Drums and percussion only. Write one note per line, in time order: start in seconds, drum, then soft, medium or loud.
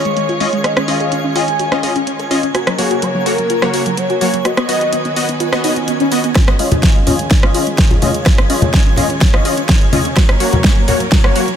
0.05 closed hi-hat soft
0.17 closed hi-hat medium
0.29 closed hi-hat soft
0.40 open hi-hat loud
0.53 closed hi-hat soft
0.64 cross-stick medium
0.64 closed hi-hat medium
0.77 cross-stick medium
0.77 closed hi-hat soft
0.88 open hi-hat loud
1.00 closed hi-hat soft
1.12 closed hi-hat medium
1.36 open hi-hat loud
1.48 closed hi-hat soft
1.59 closed hi-hat medium
1.72 cross-stick medium
1.83 open hi-hat medium
1.96 closed hi-hat soft
2.07 closed hi-hat medium
2.19 closed hi-hat soft
2.31 open hi-hat medium
2.43 closed hi-hat medium
2.55 cross-stick medium
2.55 closed hi-hat medium
2.67 cross-stick medium
2.67 closed hi-hat soft
2.78 open hi-hat loud
2.91 closed hi-hat medium
3.02 closed hi-hat medium
3.26 open hi-hat loud
3.38 closed hi-hat medium
3.50 closed hi-hat medium
3.62 cross-stick medium
3.74 open hi-hat medium
3.86 closed hi-hat medium
3.97 closed hi-hat medium
4.10 closed hi-hat soft
4.21 open hi-hat medium
4.34 closed hi-hat medium
4.45 cross-stick medium
4.45 closed hi-hat medium
4.57 cross-stick medium
4.57 closed hi-hat soft
4.69 open hi-hat loud
4.81 closed hi-hat medium
4.93 closed hi-hat medium
5.05 closed hi-hat soft
5.16 open hi-hat loud
5.29 closed hi-hat medium
5.40 closed hi-hat medium
5.53 cross-stick medium
5.64 open hi-hat loud
5.76 closed hi-hat medium
5.88 closed hi-hat medium
6.00 closed hi-hat soft
6.12 open hi-hat loud
6.24 closed hi-hat medium
6.35 kick loud
6.35 cross-stick medium
6.35 snare soft
6.35 closed hi-hat medium
6.48 cross-stick medium
6.48 closed hi-hat soft
6.59 open hi-hat loud
6.72 closed hi-hat medium
6.72 high conga medium
6.72 low conga medium
6.83 kick loud
6.83 snare soft
6.83 closed hi-hat medium
7.07 open hi-hat loud
7.07 low conga medium
7.19 closed hi-hat medium
7.31 kick loud
7.31 snare soft
7.31 closed hi-hat medium
7.31 high conga medium
7.43 cross-stick medium
7.54 open hi-hat loud
7.67 closed hi-hat medium
7.78 kick loud
7.78 snare medium
7.78 closed hi-hat medium
7.91 closed hi-hat soft
7.91 low conga medium
8.02 open hi-hat loud
8.02 high conga medium
8.14 closed hi-hat medium
8.26 kick loud
8.26 cross-stick medium
8.26 snare soft
8.26 closed hi-hat medium
8.38 cross-stick medium
8.38 closed hi-hat soft
8.50 open hi-hat loud
8.62 closed hi-hat medium
8.62 high conga medium
8.62 low conga medium
8.74 kick loud
8.74 snare medium
8.74 closed hi-hat medium
8.96 open hi-hat loud
8.96 low conga loud
9.10 closed hi-hat medium
9.21 kick loud
9.21 snare medium
9.21 closed hi-hat medium
9.21 high conga medium
9.34 cross-stick medium
9.45 open hi-hat loud
9.57 closed hi-hat medium
9.69 kick loud
9.69 snare medium
9.69 closed hi-hat medium
9.81 closed hi-hat soft
9.93 open hi-hat loud
9.93 high conga loud
10.05 closed hi-hat medium
10.16 kick loud
10.16 cross-stick medium
10.16 snare medium
10.16 closed hi-hat medium
10.29 cross-stick medium
10.29 closed hi-hat soft
10.40 open hi-hat loud
10.53 closed hi-hat medium
10.53 high conga medium
10.53 low conga medium
10.64 kick loud
10.64 snare medium
10.64 closed hi-hat medium
10.88 open hi-hat loud
10.88 low conga medium
11.00 closed hi-hat soft
11.12 kick loud
11.12 snare medium
11.12 closed hi-hat medium
11.12 high conga medium
11.24 cross-stick medium
11.36 open hi-hat loud
11.48 closed hi-hat soft